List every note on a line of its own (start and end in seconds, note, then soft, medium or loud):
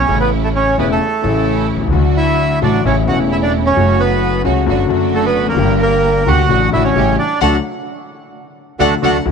0.00 0.18 C#4 medium
0.00 0.18 C#5 medium
0.06 0.74 A1 medium
0.06 0.74 A2 medium
0.06 0.73 C#3 medium
0.06 0.73 E3 medium
0.06 0.74 A3 medium
0.06 0.74 C#4 medium
0.06 0.74 E4 medium
0.11 0.75 E4 medium
0.20 0.30 B3 soft
0.20 0.30 B4 medium
0.44 0.49 A3 medium
0.44 0.49 A4 medium
0.56 0.76 C#4 medium
0.56 0.77 C#5 medium
0.78 0.97 E1 medium
0.78 0.97 E2 medium
0.78 0.97 C#3 medium
0.78 0.97 E3 medium
0.78 0.97 A3 medium
0.78 0.88 B3 soft
0.78 0.97 C#4 medium
0.78 0.97 E4 medium
0.78 0.89 B4 medium
0.91 1.67 A3 medium
0.91 1.67 A4 medium
1.22 1.90 A1 medium
1.22 1.76 A1 medium
1.22 1.90 A2 medium
1.22 1.89 C#3 medium
1.22 1.89 E3 medium
1.22 1.89 A3 medium
1.22 1.90 A3 medium
1.22 1.89 C#4 medium
1.22 1.89 E4 medium
1.26 1.91 E4 medium
1.76 1.81 B1 soft
1.81 1.87 C2 medium
1.81 1.87 C2 soft
1.87 1.92 C#2 medium
1.87 1.93 C#2 medium
1.87 2.58 D3 medium
1.91 2.58 D2 medium
1.91 2.58 F#3 medium
1.91 2.58 A3 medium
1.91 2.59 D4 medium
1.91 2.59 F#4 medium
2.17 2.59 E4 medium
2.17 2.59 E5 medium
2.62 2.81 A1 medium
2.62 2.81 A2 medium
2.62 2.81 D3 medium
2.62 2.81 F#3 medium
2.62 2.81 A3 medium
2.62 2.81 D4 medium
2.62 2.84 D4 medium
2.62 2.81 F#4 medium
2.62 2.84 D5 medium
2.85 3.04 A1 medium
2.85 3.04 A2 medium
2.85 3.04 C#3 medium
2.85 3.04 E3 medium
2.85 3.04 A3 medium
2.85 3.04 C#4 medium
2.85 2.96 C#4 medium
2.85 3.04 E4 medium
2.85 2.96 C#5 medium
3.06 3.73 E1 medium
3.06 3.73 E2 medium
3.06 3.72 C#3 medium
3.06 3.73 E3 medium
3.06 3.73 A3 medium
3.06 3.73 C#4 medium
3.06 3.73 E4 medium
3.06 3.18 F#4 medium
3.06 3.19 F#5 medium
3.10 3.74 E4 medium
3.31 3.36 E4 medium
3.31 3.37 E5 medium
3.42 3.52 D4 medium
3.42 3.53 D5 medium
3.65 3.97 C#4 medium
3.65 4.01 C#5 medium
3.75 4.41 F#1 medium
3.75 4.42 F#2 medium
3.75 4.41 C#3 medium
3.75 4.42 F#3 medium
3.75 4.41 A3 medium
3.75 4.42 A3 medium
3.75 4.41 C#4 medium
3.75 4.41 F#4 medium
3.75 4.42 F#4 medium
4.00 4.42 B3 medium
4.00 4.42 B4 medium
4.44 4.64 C#2 medium
4.44 4.64 C#3 medium
4.44 4.64 F#3 medium
4.44 4.64 A3 medium
4.44 4.64 C#4 medium
4.44 4.64 F#4 medium
4.66 4.87 F#1 medium
4.66 4.86 F#2 medium
4.66 4.85 D3 medium
4.66 4.86 F#3 medium
4.66 4.86 A3 medium
4.66 4.87 A3 medium
4.66 4.87 D4 medium
4.66 4.87 F#4 medium
4.87 5.41 F#1 medium
4.87 5.50 F#2 medium
4.87 5.54 D3 medium
4.87 5.55 F#3 medium
4.87 5.55 A3 medium
4.87 5.56 F#4 medium
4.91 5.56 A3 medium
4.91 5.56 D4 medium
4.91 5.56 F#4 medium
5.14 5.24 A3 medium
5.14 5.25 A4 medium
5.25 5.46 B3 medium
5.25 5.47 B4 medium
5.41 5.47 E1 soft
5.41 5.47 E2 soft
5.46 5.52 F1 medium
5.46 5.53 F2 medium
5.46 5.80 A#3 medium
5.46 5.81 A#4 medium
5.52 5.58 F#1 medium
5.52 5.58 F#2 medium
5.52 6.22 D3 medium
5.57 6.23 G1 medium
5.57 6.23 G2 medium
5.57 6.23 G3 medium
5.57 6.23 A#3 medium
5.57 6.24 A#3 medium
5.57 6.24 D4 medium
5.57 6.24 G4 medium
5.81 6.24 A#3 medium
5.81 6.29 A#4 medium
6.26 6.46 D2 medium
6.26 6.46 D3 medium
6.26 6.46 G3 medium
6.26 6.46 A#3 medium
6.26 6.46 D4 medium
6.26 6.70 F#4 medium
6.26 6.46 G4 medium
6.26 6.70 F#5 medium
6.49 6.69 A1 medium
6.49 6.68 A2 medium
6.49 6.68 D3 medium
6.49 6.68 F#3 medium
6.49 6.68 A3 medium
6.49 6.69 A3 medium
6.49 6.69 D4 medium
6.49 6.69 F#4 medium
6.72 6.92 A1 medium
6.72 6.92 A2 medium
6.72 6.91 D3 medium
6.72 6.91 F#3 medium
6.72 6.92 A3 medium
6.72 6.92 D4 medium
6.72 6.83 E4 medium
6.72 6.92 F#4 medium
6.72 6.83 E5 medium
6.84 7.16 C#4 medium
6.84 7.16 C#5 medium
6.96 7.15 A1 medium
6.96 7.15 A2 medium
6.96 7.15 C#3 medium
6.96 7.15 G3 medium
6.96 7.15 A3 medium
6.96 7.15 C#4 medium
6.96 7.15 E4 medium
6.96 7.15 G4 medium
7.19 7.40 D4 medium
7.19 7.40 D5 medium
7.41 7.58 D2 medium
7.41 7.56 D3 medium
7.41 7.56 F#3 medium
7.41 7.56 A3 medium
7.41 7.56 D4 medium
7.41 7.56 F#4 medium
7.41 7.57 F#4 medium
7.41 7.56 A4 medium
7.41 7.56 F#5 medium
8.79 8.97 D2 medium
8.79 8.94 D3 medium
8.79 8.94 F#3 medium
8.79 8.95 A3 medium
8.79 8.94 D4 medium
8.79 8.94 F#4 medium
8.79 8.94 A4 medium
8.79 8.95 F#5 medium
9.02 9.20 D2 medium
9.02 9.17 D3 medium
9.02 9.17 F#3 medium
9.02 9.17 A3 medium
9.02 9.18 A3 medium
9.02 9.17 D4 medium
9.02 9.18 D4 medium
9.02 9.17 F#4 medium
9.02 9.18 F#4 medium
9.02 9.17 A4 medium
9.02 9.18 F#5 medium
9.26 9.32 D2 medium
9.26 9.32 D3 medium
9.26 9.32 F#3 medium
9.26 9.32 A3 medium
9.26 9.32 E4 medium